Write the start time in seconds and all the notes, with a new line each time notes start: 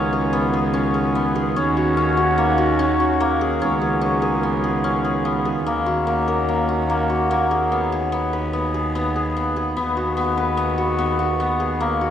Already playing: C#2 D#3 A#3 B3 C#4 F4 F#4 G#4
0.13 G#4
0.33 B3
0.54 G#4
0.74 C#4
0.94 G#4
1.15 B3
1.35 G#4
1.56 D#2 C#4 F#4
1.77 F#4
1.97 C#4
2.17 F#4
2.38 A#3
2.58 F#4
2.79 C#4
3.00 F#4
3.20 A#3
3.41 G#4
3.61 C#2 D#3 B3 C#4 F4
3.82 G#4
4.01 C#4
4.22 G#4
4.43 B3
4.64 G#4
4.84 C#4
5.04 G#4
5.25 B3
5.45 G#4
5.66 D#2 A#3
5.86 F#4
6.07 A#3
6.28 A#4
6.49 A#3
6.69 F#4
6.90 A#3
7.10 F#4
7.31 A#3
7.51 G#4
7.72 D#2 B3
7.92 G#4
8.12 B3
8.33 B4
8.53 B3
8.74 G#4
8.95 B3
9.16 G#4
9.37 B3
9.56 G#4
9.77 D#2 B3
9.97 F#4
10.17 B3
10.38 B4
10.57 B3
10.78 F#4
10.99 B3
11.19 F#4
11.40 B3
11.60 G#4
11.80 D#2 A#3
12.01 F#4